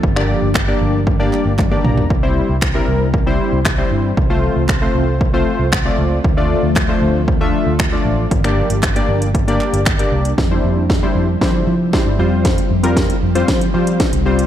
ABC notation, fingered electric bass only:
X:1
M:4/4
L:1/16
Q:1/4=116
K:F
V:1 name="Fingered electric bass" clef=bass
G,,,3 G,,,3 G,,,4- G,,, G,,,3 =B,,,2 | C,,3 C,,3 C,,4- C,, C,,3 G,,2 | C,,3 C,,3 C,,4- C,, C,,3 _D,,2 | D,,3 D,,3 D,,4- D,, D,,3 A,,,2 |
G,,,3 G,,,3 G,,,4- G,,, G,,,3 C,,2 | F,,2 F,,4 F,,2 F,2 F,3 G,, F,,2- | F,,2 F,,4 F,,2 F,2 F,3 C,,3 |]